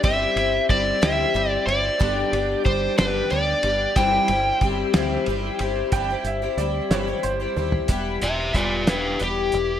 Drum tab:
RD |x-x-x-x-x-x-|x-x-x-x-x-x-|x-x-x-x-x-x-|------------|
HH |------------|------------|------------|x-x-x-x-x---|
SD |------o-----|------o-----|------o-----|------o-----|
T1 |------------|------------|------------|----------o-|
FT |------------|------------|------------|-----------o|
BD |o---o-------|o---o-------|o---o-------|o-----------|

RD |------------|
HH |x-x-x-x-x-x-|
SD |------o-----|
T1 |------------|
FT |------------|
BD |o---o-------|